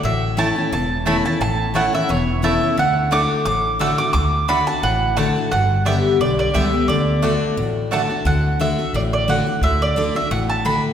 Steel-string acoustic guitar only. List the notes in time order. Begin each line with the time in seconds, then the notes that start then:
0.03 A2
0.37 E3 A3 C#4 E4
0.56 C#4 E4
0.72 E2
1.06 E3 A3 C#4 E4
1.25 C#4 E4
1.41 A2
1.74 E3 A3 C#4 E4
1.93 C#4 E4
2.09 E2
2.42 E3 A3 C#4 E4
2.61 C#4 E4
2.77 D3
3.11 D3 A3 D4 F#4
3.46 A2
3.79 D3 A3 D4 F#4
3.98 D4 F#4
4.14 D3
4.48 D3 A3 D4 F#4
4.67 D4 F#4
4.83 A2
5.17 D3 A3 D4 F#4
5.36 D4 F#4
5.53 G2
5.86 D3 G3 B3 G4
6.21 D3
6.54 D3 G3 B3 G4
6.73 B3 G4
6.89 D3
7.22 D3 A3 D4 F#4
7.57 A2
7.92 D3 A3 D4 F#4
8.10 D4 F#4
8.25 D3
8.60 D3 A3 D4 F#4
8.79 D4 F#4
8.94 A2
9.28 D3 A3 D4 F#4
9.47 D4 F#4
9.63 D3
9.96 D3 A3 D4 F#4
10.15 D4 F#4
10.31 A2
10.65 D3 A3 D4 F#4